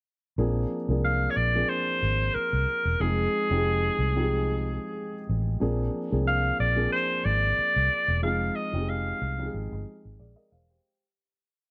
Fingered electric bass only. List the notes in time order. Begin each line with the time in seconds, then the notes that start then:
0.38 A#1
0.89 C2
1.37 A#1
2.03 G#1
2.36 muted fingered electric bass stroke
2.53 C2
2.85 E1
3.00 F1
3.51 F1
3.99 C2
5.29 A1
5.62 A#1
6.13 C2
6.60 A#1
7.25 G#1
7.59 muted fingered electric bass stroke
7.76 C2
8.08 E1
8.23 F1
8.73 F1
9.22 C2
9.54 G#1
9.72 G1
10.05 G#1
10.20 A#1
10.52 E1